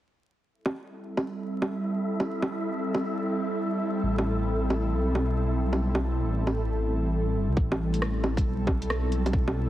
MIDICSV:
0, 0, Header, 1, 5, 480
1, 0, Start_track
1, 0, Key_signature, 0, "minor"
1, 0, Tempo, 441176
1, 556, Time_signature, 4, 2, 24, 8
1, 10546, End_track
2, 0, Start_track
2, 0, Title_t, "Synth texture"
2, 0, Program_c, 0, 99
2, 551, Note_on_c, 0, 64, 82
2, 552, Note_on_c, 0, 76, 82
2, 8246, Note_off_c, 0, 64, 0
2, 8246, Note_off_c, 0, 76, 0
2, 10546, End_track
3, 0, Start_track
3, 0, Title_t, "Ambient pad"
3, 0, Program_c, 1, 92
3, 555, Note_on_c, 1, 69, 85
3, 556, Note_on_c, 1, 60, 70
3, 556, Note_on_c, 1, 64, 70
3, 562, Note_on_c, 1, 55, 80
3, 8192, Note_off_c, 1, 60, 0
3, 8192, Note_off_c, 1, 64, 0
3, 8192, Note_off_c, 1, 69, 0
3, 8195, Note_off_c, 1, 55, 0
3, 8238, Note_on_c, 1, 55, 83
3, 8238, Note_on_c, 1, 69, 89
3, 8241, Note_on_c, 1, 60, 74
3, 8246, Note_on_c, 1, 64, 76
3, 10546, Note_off_c, 1, 55, 0
3, 10546, Note_off_c, 1, 60, 0
3, 10546, Note_off_c, 1, 64, 0
3, 10546, Note_off_c, 1, 69, 0
3, 10546, End_track
4, 0, Start_track
4, 0, Title_t, "Detuned saw bass"
4, 0, Program_c, 2, 39
4, 4387, Note_on_c, 2, 33, 95
4, 5349, Note_on_c, 2, 35, 92
4, 5365, Note_off_c, 2, 33, 0
4, 6782, Note_off_c, 2, 35, 0
4, 6789, Note_on_c, 2, 33, 81
4, 7988, Note_on_c, 2, 31, 96
4, 8005, Note_off_c, 2, 33, 0
4, 8135, Note_off_c, 2, 31, 0
4, 8140, Note_on_c, 2, 36, 82
4, 8224, Note_off_c, 2, 36, 0
4, 8233, Note_on_c, 2, 33, 97
4, 9184, Note_on_c, 2, 35, 91
4, 9200, Note_off_c, 2, 33, 0
4, 10546, Note_off_c, 2, 35, 0
4, 10546, End_track
5, 0, Start_track
5, 0, Title_t, "Drums"
5, 714, Note_on_c, 9, 61, 58
5, 823, Note_off_c, 9, 61, 0
5, 1277, Note_on_c, 9, 61, 58
5, 1386, Note_off_c, 9, 61, 0
5, 1762, Note_on_c, 9, 61, 49
5, 1871, Note_off_c, 9, 61, 0
5, 2393, Note_on_c, 9, 61, 50
5, 2502, Note_off_c, 9, 61, 0
5, 2638, Note_on_c, 9, 61, 57
5, 2746, Note_off_c, 9, 61, 0
5, 3204, Note_on_c, 9, 61, 57
5, 3313, Note_off_c, 9, 61, 0
5, 4552, Note_on_c, 9, 61, 57
5, 4661, Note_off_c, 9, 61, 0
5, 5117, Note_on_c, 9, 61, 58
5, 5226, Note_off_c, 9, 61, 0
5, 5605, Note_on_c, 9, 61, 47
5, 5713, Note_off_c, 9, 61, 0
5, 6231, Note_on_c, 9, 61, 47
5, 6340, Note_off_c, 9, 61, 0
5, 6473, Note_on_c, 9, 61, 57
5, 6582, Note_off_c, 9, 61, 0
5, 7040, Note_on_c, 9, 61, 56
5, 7149, Note_off_c, 9, 61, 0
5, 8234, Note_on_c, 9, 36, 108
5, 8343, Note_off_c, 9, 36, 0
5, 8396, Note_on_c, 9, 61, 63
5, 8505, Note_off_c, 9, 61, 0
5, 8637, Note_on_c, 9, 42, 54
5, 8725, Note_on_c, 9, 37, 99
5, 8745, Note_off_c, 9, 42, 0
5, 8834, Note_off_c, 9, 37, 0
5, 8962, Note_on_c, 9, 61, 63
5, 9070, Note_off_c, 9, 61, 0
5, 9109, Note_on_c, 9, 36, 97
5, 9120, Note_on_c, 9, 42, 54
5, 9218, Note_off_c, 9, 36, 0
5, 9228, Note_off_c, 9, 42, 0
5, 9434, Note_on_c, 9, 36, 98
5, 9439, Note_on_c, 9, 61, 51
5, 9543, Note_off_c, 9, 36, 0
5, 9547, Note_off_c, 9, 61, 0
5, 9595, Note_on_c, 9, 42, 55
5, 9684, Note_on_c, 9, 37, 98
5, 9704, Note_off_c, 9, 42, 0
5, 9793, Note_off_c, 9, 37, 0
5, 9921, Note_on_c, 9, 42, 43
5, 10030, Note_off_c, 9, 42, 0
5, 10074, Note_on_c, 9, 42, 55
5, 10074, Note_on_c, 9, 61, 50
5, 10154, Note_on_c, 9, 36, 117
5, 10183, Note_off_c, 9, 42, 0
5, 10183, Note_off_c, 9, 61, 0
5, 10263, Note_off_c, 9, 36, 0
5, 10310, Note_on_c, 9, 61, 59
5, 10418, Note_off_c, 9, 61, 0
5, 10546, End_track
0, 0, End_of_file